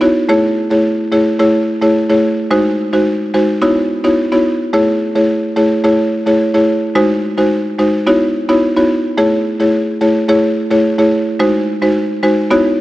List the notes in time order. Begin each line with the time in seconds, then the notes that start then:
0.01 B3 D#4 E4 F#4 C#5
0.29 A3 E4 G#4 C#5
0.71 A3 E4 G#4 C#5
1.12 A3 E4 G#4 C#5
1.39 A3 E4 G#4 C#5
1.82 A3 E4 G#4 C#5
2.09 A3 E4 G#4 C#5
2.51 G#3 D#4 F#4 C5
2.93 G#3 D#4 F#4 C5
3.34 G#3 D#4 F#4 C5
3.62 B3 D#4 E4 F#4 C#5
4.04 B3 D#4 E4 F#4 C#5
4.32 B3 D#4 E4 F#4 C#5
4.73 A3 E4 G#4 C#5
5.15 A3 E4 G#4 C#5
5.56 A3 E4 G#4 C#5
5.84 A3 E4 G#4 C#5
6.26 A3 E4 G#4 C#5
6.54 A3 E4 G#4 C#5
6.95 G#3 D#4 F#4 C5
7.37 G#3 D#4 F#4 C5
7.79 G#3 D#4 F#4 C5
8.07 B3 D#4 E4 F#4 C#5
8.49 B3 D#4 E4 F#4 C#5
8.76 B3 D#4 E4 F#4 C#5
9.18 A3 E4 G#4 C#5
9.60 A3 E4 G#4 C#5
10.01 A3 E4 G#4 C#5
10.29 A3 E4 G#4 C#5
10.71 A3 E4 G#4 C#5
10.98 A3 E4 G#4 C#5
11.39 G#3 D#4 F#4 C5
11.82 G#3 D#4 F#4 C5
12.23 G#3 D#4 F#4 C5
12.51 B3 D#4 E4 F#4 C#5